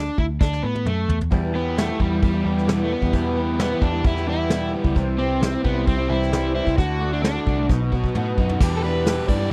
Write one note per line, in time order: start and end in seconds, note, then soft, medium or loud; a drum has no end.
0.00 0.18 D4 medium
0.18 0.38 D2 medium
0.18 0.24 E4 medium
0.18 kick medium
0.41 0.60 D2 medium
0.41 0.64 D4 medium
0.41 kick loud
0.41 snare medium
0.53 snare medium
0.63 0.84 A2 medium
0.63 0.86 B3 medium
0.75 high tom medium
0.86 1.06 F#2 medium
0.86 1.18 A3 medium
0.86 mid tom medium
1.08 1.29 E2 medium
1.08 floor tom medium
1.21 floor tom medium
1.31 1.54 E2 medium
1.31 1.91 E2 medium
1.31 1.54 B2 medium
1.31 1.52 E3 medium
1.31 1.53 G3 loud
1.31 1.55 B3 loud
1.31 6.74 E4 medium
1.31 1.55 E4 medium
1.31 4.92 B4 medium
1.31 6.74 G5 medium
1.31 4.92 B5 medium
1.31 kick loud
1.31 open hi-hat soft
1.54 1.76 E3 medium
1.54 1.76 G3 medium
1.54 1.78 B3 medium
1.54 1.77 B3 medium
1.54 1.77 E4 medium
1.54 2.45 G4 medium
1.76 1.88 E2 medium
1.76 1.88 B2 medium
1.76 1.88 E3 medium
1.76 1.89 G3 medium
1.76 2.01 A3 medium
1.76 1.88 B3 medium
1.76 1.87 E4 medium
1.76 snare loud
1.76 open hi-hat medium
1.88 2.12 E3 soft
1.88 2.11 G3 soft
1.88 2.10 B3 medium
1.88 2.08 E4 medium
2.00 2.20 E2 medium
2.00 2.68 G3 medium
2.00 2.23 G3 medium
2.00 kick medium
2.10 2.35 E3 soft
2.10 2.34 G3 soft
2.10 2.33 B3 soft
2.10 2.32 E4 medium
2.22 2.42 E2 medium
2.22 2.81 G3 medium
2.22 2.90 B3 medium
2.22 kick loud
2.22 open hi-hat medium
2.33 2.42 E3 soft
2.33 2.43 G3 soft
2.33 2.44 B3 medium
2.33 2.45 E4 soft
2.43 2.94 E2 medium
2.43 2.67 E3 medium
2.43 2.67 G3 medium
2.43 2.68 B3 medium
2.43 2.68 E4 medium
2.43 3.36 G4 medium
2.58 snare soft
2.67 2.90 E2 medium
2.67 2.90 B2 medium
2.67 2.89 E3 medium
2.67 2.90 G3 medium
2.67 2.91 B3 medium
2.67 2.91 E4 medium
2.67 snare loud
2.67 open hi-hat medium
2.84 2.91 A3 medium
2.90 3.02 E3 medium
2.90 3.02 G3 medium
2.90 3.01 B3 medium
2.90 3.59 B3 medium
2.90 3.01 E4 medium
3.02 3.12 E2 medium
3.02 3.12 E3 soft
3.02 3.12 G3 soft
3.02 3.13 B3 soft
3.02 3.13 E4 soft
3.02 kick medium
3.12 3.36 E2 medium
3.12 3.73 E2 loud
3.12 3.36 B2 medium
3.12 3.34 E3 medium
3.12 3.36 G3 medium
3.12 3.37 B3 medium
3.12 3.37 E4 medium
3.12 kick medium
3.12 open hi-hat medium
3.36 3.59 E3 medium
3.36 3.59 G3 medium
3.36 3.60 B3 medium
3.36 3.60 E4 medium
3.36 4.26 G4 medium
3.59 3.70 E2 medium
3.59 3.71 B2 medium
3.59 3.71 E3 medium
3.59 3.71 G3 medium
3.59 3.83 B3 medium
3.59 3.70 B3 medium
3.59 3.68 E4 medium
3.59 snare loud
3.59 open hi-hat medium
3.69 3.94 E3 soft
3.69 3.93 G3 soft
3.69 3.92 B3 soft
3.69 3.91 E4 medium
3.82 4.02 E2 medium
3.82 4.49 G3 medium
3.82 4.06 D4 medium
3.82 kick medium
3.92 4.17 E3 soft
3.92 4.15 G3 medium
3.92 4.15 B3 medium
3.92 4.13 E4 medium
4.04 4.73 E2 medium
4.04 4.72 B3 medium
4.04 4.27 E4 loud
4.04 kick loud
4.04 open hi-hat medium
4.14 4.25 E3 soft
4.14 4.26 G3 soft
4.14 4.27 B3 medium
4.14 4.27 E4 medium
4.14 snare soft
4.26 4.49 E3 medium
4.26 4.50 G3 medium
4.26 4.50 B3 medium
4.26 4.50 E4 medium
4.26 4.71 E4 medium
4.26 4.96 G4 medium
4.49 4.73 E2 medium
4.49 4.73 B2 medium
4.49 4.71 E3 medium
4.49 4.72 G3 medium
4.49 4.73 B3 medium
4.49 4.74 E4 medium
4.49 snare loud
4.49 open hi-hat soft
4.72 4.84 E3 medium
4.72 4.84 G3 medium
4.72 4.83 B3 medium
4.72 4.82 E4 medium
4.84 4.94 C#2 medium
4.84 4.94 E3 soft
4.84 4.95 G3 medium
4.84 4.96 B3 medium
4.84 4.95 E4 medium
4.84 kick medium
4.95 5.55 C2 loud
4.95 5.18 C3 medium
4.95 5.16 E3 medium
4.95 5.17 G3 loud
4.95 5.18 C4 medium
4.95 5.19 E4 medium
4.95 6.76 C5 medium
4.95 6.76 C6 medium
4.95 kick medium
4.95 open hi-hat medium
5.17 5.40 E3 medium
5.17 5.40 G3 medium
5.17 5.64 C4 medium
5.17 5.41 C4 medium
5.17 5.41 E4 medium
5.17 6.07 G4 medium
5.40 5.52 C3 medium
5.40 5.53 E3 medium
5.40 5.53 G3 medium
5.40 5.52 C4 medium
5.40 5.50 E4 medium
5.40 snare loud
5.40 open hi-hat medium
5.51 5.76 G3 soft
5.51 5.74 C4 soft
5.51 5.72 E4 soft
5.64 5.84 C2 medium
5.64 6.31 G3 medium
5.64 5.88 B3 medium
5.64 kick medium
5.74 5.99 G3 soft
5.74 5.98 C4 medium
5.74 5.96 E4 medium
5.86 6.07 C2 medium
5.86 6.54 C4 medium
5.86 6.11 C4 medium
5.86 kick loud
5.86 open hi-hat medium
5.97 6.07 G3 soft
5.97 6.08 C4 soft
5.97 6.09 E4 medium
6.07 6.59 C2 medium
6.07 6.30 E3 medium
6.07 6.31 G3 medium
6.07 6.32 C4 medium
6.07 6.54 E4 loud
6.07 6.32 E4 medium
6.07 6.77 G4 medium
6.23 snare soft
6.31 6.55 C3 medium
6.31 6.52 E3 medium
6.31 6.53 G3 medium
6.31 6.54 C4 medium
6.31 6.55 E4 medium
6.31 snare loud
6.31 open hi-hat soft
6.53 6.66 E3 medium
6.53 6.66 G3 medium
6.53 6.65 C4 medium
6.53 6.78 E4 medium
6.53 6.63 E4 medium
6.64 6.77 C2 medium
6.64 6.77 G3 soft
6.64 6.78 C4 soft
6.64 6.77 E4 medium
6.64 kick medium
6.77 7.37 D2 loud
6.77 6.98 D3 medium
6.77 6.99 A3 medium
6.77 7.00 D4 medium
6.77 7.10 F#4 loud
6.77 7.01 F#4 medium
6.77 8.59 F#4 medium
6.77 7.69 D5 medium
6.77 7.69 A5 medium
6.77 7.69 D6 medium
6.77 kick medium
6.77 open hi-hat medium
6.99 7.21 D3 medium
6.99 7.22 A3 medium
6.99 7.23 D4 medium
6.99 7.24 F#4 medium
7.13 7.23 D4 medium
7.23 7.34 D3 medium
7.23 7.35 A3 medium
7.23 7.66 D4 medium
7.23 7.35 D4 medium
7.23 7.33 F#4 medium
7.23 snare loud
7.23 open hi-hat medium
7.34 7.59 A3 soft
7.34 7.57 D4 soft
7.34 7.56 F#4 medium
7.46 7.66 C2 medium
7.46 7.69 A3 medium
7.46 kick medium
7.57 7.69 A3 soft
7.57 7.70 D4 medium
7.57 7.69 F#4 medium
7.69 8.09 B1 medium
7.69 7.80 B2 medium
7.69 7.81 F#3 medium
7.69 7.81 B3 medium
7.69 7.81 D#4 medium
7.69 7.79 F#4 medium
7.69 8.59 D#5 medium
7.69 8.59 B5 medium
7.69 8.59 D#6 medium
7.69 kick loud
7.69 snare medium
7.81 7.92 B3 soft
7.81 7.93 D#4 medium
7.81 7.92 F#4 soft
7.92 8.15 F#3 medium
7.92 8.15 B3 medium
7.92 8.16 D#4 medium
7.92 8.16 F#4 medium
7.92 kick medium
8.04 kick medium
8.15 8.35 A2 medium
8.15 8.38 B2 loud
8.15 8.37 F#3 medium
8.15 8.38 B3 loud
8.15 8.38 D#4 medium
8.15 8.39 F#4 loud
8.15 mid tom medium
8.38 8.58 F#2 medium
8.38 8.49 F#3 medium
8.38 8.49 B3 medium
8.38 8.50 D#4 medium
8.38 8.49 F#4 medium
8.38 kick medium
8.49 8.61 B3 soft
8.49 8.61 D#4 medium
8.49 8.60 F#4 medium
8.49 floor tom medium
8.60 9.19 E2 loud
8.60 8.83 E2 medium
8.60 8.83 B2 medium
8.60 8.82 E3 medium
8.60 8.83 G3 medium
8.60 8.83 B3 loud
8.60 8.84 D4 loud
8.60 8.82 E4 loud
8.60 8.84 G4 loud
8.60 kick loud
8.60 crash loud
8.77 8.83 A4 medium
8.82 9.05 E3 medium
8.82 9.06 G3 medium
8.82 9.07 B3 medium
8.82 9.06 D4 medium
8.82 9.08 E4 medium
8.82 9.29 B4 medium
8.82 open hi-hat medium
8.86 9.07 G4 medium
9.05 9.28 E2 medium
9.05 9.28 B2 medium
9.05 9.27 E3 medium
9.05 9.28 G3 loud
9.05 9.28 B3 medium
9.05 9.29 D4 medium
9.05 9.27 E4 medium
9.05 9.29 G4 loud
9.05 snare loud
9.05 open hi-hat medium
9.27 9.48 G2 loud
9.27 9.39 E3 medium
9.27 9.40 G3 medium
9.27 9.53 B3 medium
9.27 9.39 D4 medium
9.27 9.53 E4 medium
9.27 9.38 G4 medium
9.27 9.49 D5 loud
9.27 kick loud
9.27 open hi-hat medium
9.39 9.53 E3 medium
9.39 9.53 G3 medium
9.39 9.53 D4 medium
9.39 9.53 G4 medium